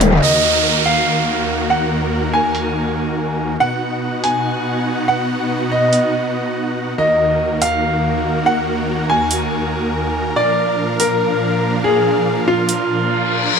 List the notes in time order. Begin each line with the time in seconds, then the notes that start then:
Already playing: D#1 D#3 A#3 A#4 D#5 G#5
0.01 closed hi-hat, high tom
0.12 mid tom
0.22 D#2 D#3 A#3 F#4 A#4 D#5, downlifter
0.86 F5, open hi-hat
1.70 F#5
2.33 G#5
2.55 open hi-hat
3.60 B2 B3 D#4 F#4 F#5
4.24 G#5, open hi-hat
5.08 F#5
5.71 D#5
5.93 open hi-hat
6.98 D#2 D#3 A#3 F#4 A#4 D#5
7.62 F5, open hi-hat
8.46 F#5
9.10 G#5
9.31 open hi-hat
10.36 A#2 F3 D4 D5 F5
11.00 A#4, open hi-hat
11.84 G#4
12.48 F4
12.69 open hi-hat
12.90 reverse cymbal